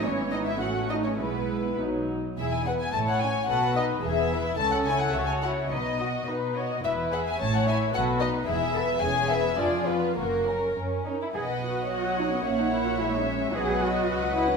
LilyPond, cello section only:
\new Staff \with { instrumentName = "Cello section" } { \time 2/4 \key e \major \tempo 4 = 108 cis'8 dis'16 e'16 fis'8 dis'16 cis'16 | b4 r4 | e,4 a,4 | b,4 e,4 |
cis4 cis4 | b,4 b,4 | e,4 a,4 | b,4 e,4 |
\key b \major e,4 f,4 | fis,4 fis,8 cis'8 | gis'8 fis'4 dis'16 b16 | cis'16 dis'16 e'16 fis'16 e'16 dis'16 cis'8 |
gis'8 fis'4 e'16 cis'16 | }